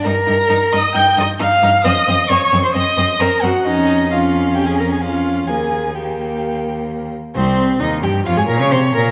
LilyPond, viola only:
\new Staff \with { instrumentName = "Viola" } { \time 4/4 \key ees \mixolydian \tempo 4 = 132 bes'4. ees''8 g''8 ees''8 f''4 | ees''4 des''8. c''16 ees''4 bes'8 ges'8 | ees'4 f'4 g'16 aes'16 bes'16 aes'16 f'4 | aes'4 g'2~ g'8 r8 |
c'4 ees'8 g'8 f'16 aes'16 bes'16 des''16 c''8 bes'8 | }